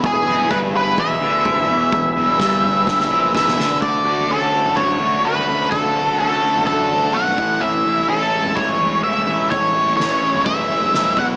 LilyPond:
<<
  \new Staff \with { instrumentName = "Lead electric guitar" } { \time 4/4 \key a \major \tempo 4 = 126 gis'4 b'8 b'8 e''2~ | e''2. e''4 | d''4 a'4 cis''4 b'4 | a'4 a'4 a'4 fis''4 |
e''4 a'4 cis''4 e''4 | cis''4 cis''4 e''4. fis''8 | }
  \new Staff \with { instrumentName = "Transistor combo organ" } { \time 4/4 \key a \major << { <b e' b'>1~ | <b e' b'>1 | a'1~ | a'2.~ a'8 gis''8~ |
gis''1~ | gis''2.~ gis''8 <b fis'>8 | } \\ { gis'1~ | gis'1 | fis'1~ | fis'2.~ fis'8 e'8~ |
e'1~ | e'1 | } >> }
  \new Staff \with { instrumentName = "Distorted electric guitar" } { \clef bass \time 4/4 \key a \major e,8 e,8 g,4 e,8 d4 e,8 | e,8 e,8 g,4 g,8 ais,8 e,8 d8 | d8 fis'8 cis'8 a8 d8 a8 fis'8 cis'8 | d8 fis'8 cis'8 a8 d8 a8 fis'8 a,8 |
a,8 e'8 cis'8 gis8 e8 gis8 e'8 cis'8 | a,8 e'8 cis'8 gis8 e8 gis8 e'8 b,8 | }
  \new Staff \with { instrumentName = "Picked electric bass" } { \clef bass \time 4/4 \key a \major e,,8 e,,8 g,,4 e,,8 d,4 e,,8 | e,,8 e,,8 g,,4 g,,8 ais,,8 e,,8 d,8 | d,8 d,8 d,4 d,8 d,8 d,8 d,8 | d,4 d,8 d,8 d,4 b,,8 a,,8 |
a,,8 a,,8 a,,4 a,,8 a,,8 a,,8 a,,8 | a,,4 a,,8 a,,8 a,,4 ais,,8 b,,8 | }
  \new DrumStaff \with { instrumentName = "Drums" } \drummode { \time 4/4 <bd tomfh>8 toml16 tomfh16 bd16 tomfh8. bd16 tomfh8. <bd toml>16 tomfh8. | <bd tomfh>8 toml16 tomfh16 <bd sn>16 tomfh16 toml8 <bd sn>16 sn16 bd16 toml16 <bd sn>16 sn16 sn16 tomfh16 | <bd tomfh>8. tomfh16 r8. <tomfh toml>16 bd8 tomfh8 r16 tomfh8. | <bd tomfh>8. tomfh16 r8. <tomfh toml>16 bd8 tomfh8 r16 tomfh16 bd8 |
tomfh8. tomfh16 r8. <tomfh toml>16 bd8 tomfh8 r16 tomfh8. | <bd tomfh>8. tomfh16 sn8. <tomfh toml>16 bd8 tomfh16 toml16 sn16 tomfh16 <bd toml>8 | }
>>